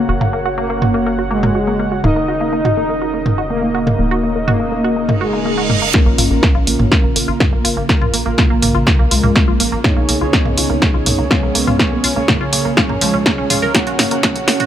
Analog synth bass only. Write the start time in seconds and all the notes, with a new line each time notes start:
0.09 F#1
2.04 D#1
3.99 D#1
6.06 A#1
6.18 A#1
6.31 A#1
6.55 A#1
6.67 A#1
6.79 A#1
7.04 A#1
7.16 A#1
7.28 A#1
7.53 A#1
7.65 A#1
7.77 A#1
8.02 A#1
8.14 A#1
8.26 A#1
8.50 A#1
8.62 A#1
8.75 A#1
8.99 C#2
9.11 C#2
9.23 C#2
9.48 A#1
9.60 A#1
9.72 A#1
9.97 C#2
10.09 C#2
10.21 C#2
10.46 C#2
10.58 C#2
10.70 C#2
10.94 C#2
11.06 C#2
11.19 C#2
11.43 C#2
11.55 C#2
11.67 C#2
11.92 C#2
12.04 C#2
12.16 C#2
12.41 C#2
12.53 C#2
12.65 C#2
12.89 F2
13.01 C#2
13.14 C#2
13.38 C#2
13.50 C#2
13.62 C#2
13.87 F#1
13.99 F#1
14.11 F#1
14.36 F#1
14.48 F#1
14.60 F#1